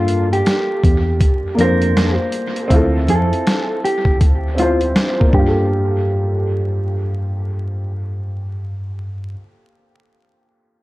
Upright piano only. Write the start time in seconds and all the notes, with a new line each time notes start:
Already playing: A#3 D4 F4 A4 A#4
1.55 A#3 D4
1.60 F4 C5
2.68 C4 E4
2.73 F4 A4
4.55 C4 E4
4.60 F4 C5
5.20 A#3
5.29 D4
5.38 F4
5.48 A4